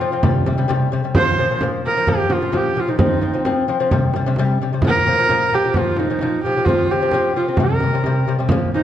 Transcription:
Already playing: horsehead fiddle F4
0.00 lute F3 C4, frame drum
0.12 lute F3 C4
0.23 lute C3 G3, frame drum
0.46 lute C3 G3, frame drum
0.58 lute C3 G3
0.68 lute C3 G3, frame drum
0.92 lute C3 G3, frame drum
1.04 lute C3 G3
1.15 lute A#2 F3, horsehead fiddle C5, frame drum
1.37 lute A#2 F3, frame drum
1.51 lute A#2 F3
1.61 lute A#2 F3, frame drum
1.84 lute A#2 F3, horsehead fiddle A#4, frame drum
1.97 lute A#2 F3
2.07 lute A#2 F3, horsehead fiddle G4, frame drum
2.29 lute A#2 F3, horsehead fiddle F4, frame drum
2.41 lute A#2 F3
2.52 lute A#2 F3, frame drum
2.57 horsehead fiddle G4
2.76 lute A#2 F3
2.80 horsehead fiddle F4
2.87 lute A#2 F3, horsehead fiddle D#4
2.99 lute F3 C4, horsehead fiddle D#4, frame drum
3.21 lute F3 C4, frame drum
3.33 lute F3 C4
3.45 lute F3 C4, frame drum
3.68 lute F3 C4, frame drum
3.80 lute F3 C4
3.91 lute C3 G3, frame drum
4.14 lute C3 G3, frame drum
4.26 lute C3 G3
4.36 lute C3 G3, frame drum
4.60 lute C3 G3, frame drum
4.73 lute C3 G3
4.82 lute A#2 F3, frame drum
4.87 horsehead fiddle A#4
5.06 lute A#2 F3, frame drum
5.18 lute A#2 F3
5.29 lute A#2 F3, frame drum
5.51 lute A#2 F3, horsehead fiddle G4, frame drum
5.64 lute A#2 F3
5.74 lute A#2 F3, frame drum
5.78 horsehead fiddle F4
5.97 lute A#2 F3, horsehead fiddle D#4, frame drum
6.10 lute A#2 F3
6.19 lute A#2 F3, frame drum
6.43 lute A#2 F3, horsehead fiddle G4, frame drum
6.56 lute A#2 F3
6.65 lute F3 C4, horsehead fiddle F4, frame drum
6.89 lute F3 C4, horsehead fiddle G4, frame drum
7.02 lute F3 C4
7.11 lute F3 C4, frame drum
7.36 lute F3 C4, horsehead fiddle F4
7.48 lute F3 C4
7.57 lute C3 G3, horsehead fiddle A#4, frame drum
7.80 lute C3 G3, frame drum
7.94 lute C3 G3
8.04 lute C3 G3, frame drum
8.26 lute C3 G3, frame drum
8.39 lute C3 G3
8.49 lute A#2 F3, frame drum
8.72 lute A#2 F3, horsehead fiddle D#4, frame drum

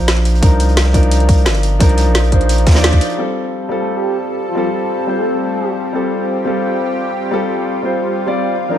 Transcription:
Already playing: sub bass A#1, grand piano F3 D4 D#4 A#4 C5
0.08 snare, closed hi-hat
0.17 closed hi-hat
0.25 closed hi-hat
0.35 closed hi-hat
0.41 sub bass C2, grand piano F3 D4 D#4 A#4, kick, closed hi-hat
0.60 closed hi-hat
0.69 closed hi-hat
0.77 snare, closed hi-hat
0.86 snare
0.93 grand piano F3 D4 D#4 A#4, kick, closed hi-hat
1.03 closed hi-hat
1.11 closed hi-hat
1.20 closed hi-hat
1.29 kick, closed hi-hat
1.37 closed hi-hat
1.46 sub bass G1, snare, closed hi-hat
1.55 closed hi-hat
1.63 closed hi-hat
1.79 sub bass C2, grand piano F3 D4 D#4 A#4, kick, closed hi-hat
1.89 closed hi-hat
1.97 closed hi-hat
2.06 sub bass A#1
2.15 snare, closed hi-hat
2.24 closed hi-hat
2.31 grand piano F3 D4 D#4 C5, kick, closed hi-hat
2.41 closed hi-hat
2.49 closed hi-hat
2.58 closed hi-hat
2.66 sub bass D#2, kick, snare, closed hi-hat
2.70 snare, closed hi-hat
2.74 grand piano F3 D4 D#4 D5, snare, closed hi-hat
2.84 snare, closed hi-hat
2.93 kick, closed hi-hat
3.01 closed hi-hat
3.10 closed hi-hat
3.17 grand piano G3 C4 F4 A4, analog synth pad G3 C4 F4 A4
3.69 grand piano G3 C4 F4 A4
3.79 soft synth lead A4
3.96 soft synth lead G4
4.48 soft synth lead F4
4.55 grand piano G3 C4 F4 A4
5.07 grand piano G3 C4 F4 C5
5.17 soft synth lead A4
5.43 soft synth lead A4
5.93 grand piano G3 C4 F4 A4, analog synth pad G4
6.45 grand piano G3 C4 F4 A4
7.31 grand piano G3 C4 F4 A4
7.83 grand piano G3 C4 F4 C5
8.26 grand piano G3 C4 F4 D5
8.53 analog synth pad D#3 C4 A#4 D5
8.69 grand piano F3 C4 D4 D#4 A#4

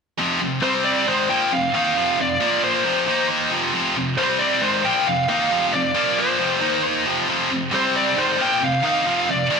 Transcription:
0.18 distorted electric guitar F2 C3 F3
0.41 distorted electric guitar F2 C3
0.63 distorted electric guitar C3 G3 C4, lead electric guitar C5
0.84 lead electric guitar D5
1.07 distorted electric guitar G#2 D#3 G#3, lead electric guitar C5
1.29 distorted electric guitar A#2 F3 A#3, lead electric guitar G5
1.52 distorted electric guitar F2 C3, lead electric guitar F5
1.74 distorted electric guitar D#3 A#3 D#4, lead electric guitar F5
1.96 distorted electric guitar F2 C3 F3
2.18 distorted electric guitar F2 C3, lead electric guitar D5
2.40 distorted electric guitar A#2 F3 A#3
2.64 lead electric guitar C5
2.84 distorted electric guitar F2 C3 F3
3.06 distorted electric guitar D#3 A#3 D#4
3.51 distorted electric guitar F2 C3 F3
3.73 distorted electric guitar F2 C3 F3
3.96 distorted electric guitar F2 C3
4.18 distorted electric guitar C3 G3 C4, lead electric guitar C5
4.39 lead electric guitar D5
4.62 distorted electric guitar G#2 D#3 G#3, lead electric guitar C5
4.84 distorted electric guitar A#2 F3 A#3, lead electric guitar G5
5.07 distorted electric guitar F2 C3, lead electric guitar F5
5.29 distorted electric guitar D#3 A#3 D#4, lead electric guitar F5
5.51 distorted electric guitar F2 C3 F3
5.73 distorted electric guitar F2 C3, lead electric guitar D5
5.95 distorted electric guitar A#2 F3 A#3
6.19 lead electric guitar C5
6.39 distorted electric guitar F2 C3 F3
6.61 distorted electric guitar D#3 A#3 D#4
7.06 distorted electric guitar F2 C3 F3
7.28 distorted electric guitar F2 C3 F3
7.51 distorted electric guitar F2 C3
7.71 distorted electric guitar C3 G3 C4, lead electric guitar C5
7.96 lead electric guitar D5
8.16 distorted electric guitar G#2 D#3 G#3, lead electric guitar C5
8.37 distorted electric guitar A#2 F3 A#3, lead electric guitar G5
8.61 distorted electric guitar F2 C3, lead electric guitar F5
8.83 distorted electric guitar D#3 A#3 D#4, lead electric guitar F5
9.05 distorted electric guitar F2 C3 F3
9.29 distorted electric guitar F2 C3, lead electric guitar D5
9.51 distorted electric guitar A#2 F3 A#3

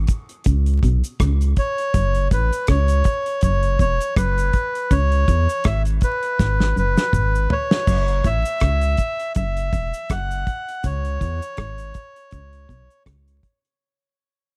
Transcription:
0.07 kick, closed hi-hat, cabasa
0.29 closed hi-hat
0.44 sub bass C#2, clean electric guitar C#3, kick, closed hi-hat, cabasa
0.66 closed hi-hat
0.83 sub bass B1, clean electric guitar B2, kick, closed hi-hat, cabasa
1.04 closed hi-hat, cabasa
1.20 sub bass C#2, clean electric guitar C#3, kick, cross-stick, closed hi-hat, cabasa
1.41 closed hi-hat, cabasa
1.57 melodica C#5, kick, closed hi-hat
1.78 closed hi-hat
1.94 sub bass F#1, clean electric guitar F#2, kick, closed hi-hat, cabasa
2.15 closed hi-hat
2.31 sub bass A1, clean electric guitar A2, melodica B4, kick, closed hi-hat, cabasa
2.53 closed hi-hat, cabasa
2.67 sub bass C#2, clean electric guitar C#3, melodica C#5, kick, cross-stick, closed hi-hat
2.88 closed hi-hat, cabasa
3.04 kick, closed hi-hat, cabasa
3.26 closed hi-hat
3.41 sub bass F#1, clean electric guitar F#2, melodica C#5, kick, closed hi-hat, cabasa
3.63 closed hi-hat
3.79 sub bass E1, clean electric guitar E2, melodica C#5, kick, closed hi-hat, cabasa
4.00 closed hi-hat, cabasa
4.16 sub bass F#1, clean electric guitar F#2, melodica B4, kick, cross-stick, closed hi-hat, cabasa
4.38 closed hi-hat, cabasa
4.53 kick, closed hi-hat
4.75 closed hi-hat
4.91 sub bass C#2, clean electric guitar C#3, melodica C#5, kick, closed hi-hat, cabasa
5.12 closed hi-hat
5.28 sub bass E2, clean electric guitar E3, kick, closed hi-hat, cabasa
5.49 closed hi-hat, cabasa
5.64 sub bass G#1, clean electric guitar G#2, melodica E5, kick, cross-stick, closed hi-hat
5.85 closed hi-hat, cabasa
6.01 melodica B4, kick, closed hi-hat, cabasa
6.23 closed hi-hat
6.39 sub bass G#1, clean electric guitar G#2, kick, snare, cabasa
6.60 snare
6.76 sub bass F#1, clean electric guitar F#2, melodica B4, cabasa
6.97 snare, cabasa
7.13 sub bass G#1, clean electric guitar G#2, kick, mid tom, cabasa
7.35 cabasa
7.50 melodica C#5, floor tom
7.71 snare
7.87 sub bass F#1, clean electric guitar F#2, kick, crash, cabasa
8.08 closed hi-hat
8.24 sub bass A1, clean electric guitar A2, melodica E5, kick, closed hi-hat, cabasa
8.45 closed hi-hat, cabasa
8.60 sub bass C#2, clean electric guitar C#3, kick, cross-stick, closed hi-hat
8.81 closed hi-hat, cabasa
8.97 kick, closed hi-hat, cabasa
9.20 closed hi-hat
9.35 sub bass F#1, clean electric guitar F#2, melodica E5, kick, closed hi-hat, cabasa
9.57 closed hi-hat
9.73 sub bass E1, clean electric guitar E2, kick, closed hi-hat, cabasa
9.94 closed hi-hat, cabasa
10.10 sub bass F#1, clean electric guitar F#2, melodica F#5, kick, cross-stick, closed hi-hat, cabasa
10.31 closed hi-hat, cabasa
10.47 kick, closed hi-hat
10.69 closed hi-hat
10.84 sub bass C#2, clean electric guitar C#3, melodica C#5, kick, closed hi-hat, cabasa
11.05 closed hi-hat
11.21 sub bass E2, clean electric guitar E3, kick, closed hi-hat, cabasa
11.42 closed hi-hat, cabasa
11.57 sub bass G#1, clean electric guitar G#2, kick, cross-stick, closed hi-hat
11.78 closed hi-hat, cabasa
11.94 kick, closed hi-hat, cabasa
12.16 closed hi-hat
12.31 sub bass C#2, clean electric guitar C#3, kick, closed hi-hat, cabasa
12.53 closed hi-hat
12.69 sub bass B1, clean electric guitar B2, kick, closed hi-hat, cabasa
12.90 closed hi-hat, cabasa
13.06 sub bass C#2, clean electric guitar C#3, kick, cross-stick, closed hi-hat, cabasa
13.28 closed hi-hat, cabasa
13.43 kick, closed hi-hat
13.65 closed hi-hat

